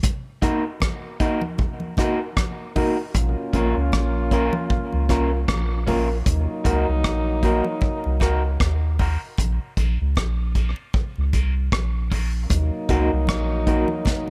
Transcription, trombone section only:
3.15 5.83 A#3 medium
3.15 5.83 C#4 medium
3.15 5.84 F4 medium
6.26 8.95 F#3 medium
6.26 8.95 A#3 medium
6.26 8.95 D#4 medium
9.39 12.07 A#3 medium
9.39 12.07 C#4 medium
9.39 12.07 F4 medium
12.51 14.30 F#3 medium
12.51 14.30 A#3 medium
12.51 14.30 D#4 medium

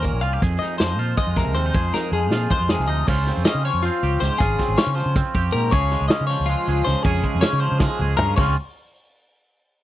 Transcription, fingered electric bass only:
0.00 0.10 D#2 medium
0.13 0.22 A#1 medium
0.22 0.38 C2 medium
0.43 0.57 F2 medium
0.80 0.98 F2 medium
0.98 1.13 A#2 medium
1.27 1.42 F2 medium
1.46 1.55 C2 medium
1.55 1.70 D#2 medium
1.75 1.90 F2 loud
2.12 2.31 F2 medium
2.31 2.46 A#2 medium
2.60 2.75 F2 medium
2.79 2.88 C2 medium
2.88 3.03 D2 medium
3.09 3.30 C#2 loud
3.37 3.44 F2 medium
3.55 3.69 C#3 medium
3.74 3.88 F2 medium
4.03 4.17 C#2 medium
4.21 4.29 C#2 medium
4.41 4.55 G#1 loud
4.68 4.76 G#1 medium
4.87 5.02 C#3 medium
5.06 5.21 C#3 medium
5.35 5.50 F2 medium
5.54 5.69 A#2 loud
5.73 5.95 C#2 loud
6.01 6.08 C#2 loud
6.21 6.35 C#3 medium
6.40 6.54 C#2 medium
6.68 6.82 C#2 medium
6.87 6.94 C#2 medium
7.05 7.20 F2 loud
7.35 7.42 F2 loud
7.53 7.67 C#3 medium
7.72 7.86 C#3 loud
7.99 8.14 C#2 medium
8.18 8.33 G2 loud
8.38 8.55 C#2 loud

